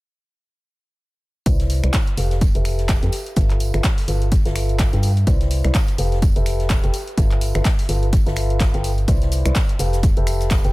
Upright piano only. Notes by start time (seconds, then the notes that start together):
1.46 E4 B4 C5 D5
1.84 E4 B4 C5 D5
2.18 G4 A4 B4 F5
2.55 G4 A4 B4 E5
3.03 G4 A4 B4 G5
3.36 F4 A4 B4 E5
3.74 F4 A4 B4 E5
4.08 F4 A4 B4 F5
4.45 F4 A4 B4 E5
4.93 F4 A4 B4 G5
5.27 E4 B4 C5 D5
5.64 E4 B4 C5 D5
5.98 G4 A4 B4 F5
6.36 G4 A4 B4 E5
6.84 G4 A4 B4 G5
7.18 F4 A4 B4 E5
7.55 F4 A4 B4 E5
7.89 F4 A4 B4 F5
8.26 F4 A4 B4 E5
8.74 F4 A4 B4 G5
9.08 E4 B4 C5 D5
9.45 E4 B4 C5 D5
9.79 G4 A4 B4 F5
10.17 G4 A4 B4 E5
10.64 G4 A4 B4 G5